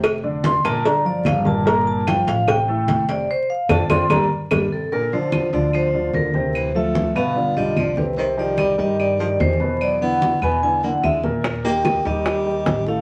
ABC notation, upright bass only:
X:1
M:4/4
L:1/8
Q:1/4=147
K:Gm
V:1 name="Upright bass" clef=bass
F,,,3 G,,,3 G,,,2- | G,,,3 A,,,3 F,,,2 | z2 F,, F,, G,,, z G,,, z | z3 D,,3 D,,2- |
D,,3 G,,,2 =B,,, C,,2- | C,,3 G,,3 =E,,2- | =E,,3 E,,3 _E,,2- | E,,3 E,,3 A,,,2 |]